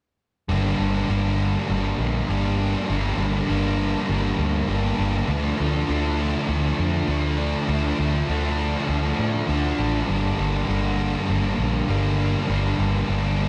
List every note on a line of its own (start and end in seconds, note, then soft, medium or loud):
0.49 0.72 G1 medium
0.49 2.88 G2 medium
0.49 1.07 D3 medium
0.49 1.09 G3 medium
0.49 1.10 A#3 medium
0.49 1.11 D4 medium
0.79 1.02 G1 medium
0.79 1.08 D3 soft
0.79 1.10 G3 medium
1.08 1.55 G1 medium
1.08 1.66 G2 medium
1.08 1.69 D3 medium
1.08 1.41 G3 medium
1.08 1.39 A#3 medium
1.08 1.38 D4 medium
1.38 2.28 G3 medium
1.38 2.29 A#3 medium
1.38 2.31 D4 medium
1.68 1.92 G1 medium
1.68 2.27 G2 medium
1.68 2.29 D3 medium
1.68 2.29 G3 medium
1.98 2.21 A#1 medium
2.28 2.74 G1 medium
2.28 2.86 G2 medium
2.28 2.88 D3 medium
2.28 2.60 G3 medium
2.28 2.59 A#3 medium
2.28 2.58 D4 medium
2.59 2.89 G3 soft
2.59 2.90 A#3 medium
2.59 2.91 D4 medium
2.89 3.12 G1 medium
2.89 3.78 G2 medium
2.89 3.47 D3 medium
2.89 3.48 G3 medium
2.89 3.49 A#3 medium
2.89 3.51 D4 medium
3.17 3.40 G1 medium
3.17 3.48 D3 soft
3.17 3.49 G3 medium
3.47 3.94 G1 medium
3.47 4.08 G2 medium
3.47 4.08 D3 medium
3.47 3.80 G3 medium
3.47 3.79 A#3 medium
3.47 3.78 D4 medium
3.79 4.68 G3 soft
3.79 4.68 A#3 medium
3.79 4.70 D4 medium
4.09 4.32 G1 medium
4.09 4.67 G2 medium
4.09 4.68 D3 medium
4.09 4.69 G3 medium
4.39 4.61 D2 medium
4.68 4.91 G1 medium
4.68 5.26 G2 medium
4.68 5.26 D3 medium
4.68 5.00 G3 medium
4.68 4.99 A#3 medium
4.68 4.98 D4 medium
4.98 5.21 G1 medium
4.98 5.28 G3 soft
4.98 5.27 A#3 medium
4.98 5.30 D4 medium
5.28 5.51 D2 medium
5.28 5.87 D3 medium
5.28 5.88 F3 medium
5.28 5.89 A3 medium
5.28 5.89 D4 medium
5.58 5.82 D2 medium
5.58 5.89 A3 soft
5.58 5.90 D4 medium
5.87 6.34 D2 medium
5.87 7.07 D3 medium
5.87 6.19 F3 medium
5.87 6.18 A3 medium
5.87 6.17 D4 medium
6.17 7.08 F3 medium
6.17 7.09 A3 medium
6.17 7.10 D4 medium
6.48 6.71 D2 medium
6.48 7.07 D3 medium
6.48 7.09 A3 medium
6.48 7.10 D4 medium
6.79 7.01 F2 medium
7.07 7.53 D2 medium
7.07 7.66 D3 medium
7.07 7.40 F3 medium
7.07 7.38 A3 medium
7.07 7.38 D4 medium
7.38 7.68 F3 medium
7.38 7.68 A3 medium
7.38 7.70 D4 medium
7.67 7.91 D2 medium
7.67 8.26 D3 medium
7.67 8.28 F3 medium
7.67 8.28 A3 medium
7.67 8.30 D4 medium
7.99 8.21 D2 medium
7.99 8.29 A3 soft
7.99 8.31 D4 medium
8.28 8.74 D2 medium
8.28 8.88 D3 medium
8.28 8.60 F3 medium
8.28 8.58 A3 medium
8.28 8.57 D4 medium
8.57 9.48 F3 medium
8.57 9.48 A3 medium
8.57 9.50 D4 medium
8.87 9.11 D2 medium
8.87 9.46 D3 medium
8.87 9.47 A3 medium
8.87 9.49 D4 medium
9.19 9.41 A2 medium
9.47 9.71 D2 medium
9.47 10.06 D3 medium
9.47 9.80 F3 medium
9.47 9.78 A3 medium
9.47 9.78 D4 medium
9.78 10.01 A1 medium
9.78 10.09 F3 medium
9.78 10.07 A3 medium
9.78 10.10 D4 medium
10.07 10.31 G1 medium
10.07 12.47 G2 medium
10.07 10.66 D3 medium
10.07 10.68 G3 medium
10.07 10.69 A#3 medium
10.07 10.70 D4 medium
10.38 10.61 G1 medium
10.38 10.66 D3 medium
10.38 10.68 G3 medium
10.66 11.14 G1 medium
10.66 11.25 G2 medium
10.66 11.28 D3 medium
10.66 11.00 G3 medium
10.66 10.98 A#3 medium
10.71 10.96 D4 medium
10.97 11.87 G3 medium
10.97 11.88 A#3 medium
10.97 11.90 D4 medium
11.26 11.52 G1 medium
11.26 11.86 G2 medium
11.26 11.88 D3 medium
11.26 11.89 G3 medium
11.58 11.81 A#1 medium
11.87 12.34 G1 medium
11.87 12.46 G2 medium
11.87 12.48 D3 medium
11.87 12.20 G3 medium
11.87 12.19 A#3 medium
11.87 12.18 D4 medium
12.18 12.48 G3 medium
12.18 12.49 A#3 medium
12.18 12.50 D4 medium
12.48 12.72 G1 medium
12.48 13.38 G2 medium
12.48 13.07 D3 medium
12.48 13.08 G3 medium
12.48 13.09 A#3 medium
12.48 13.10 D4 medium
12.77 13.01 G1 medium
12.77 13.08 D3 soft
12.77 13.08 G3 medium
13.08 13.49 G1 medium
13.08 13.49 G2 medium
13.08 13.49 D3 medium
13.08 13.40 G3 medium
13.08 13.38 A#3 medium
13.08 13.37 D4 medium
13.38 13.49 G3 soft
13.38 13.49 A#3 medium
13.38 13.49 D4 medium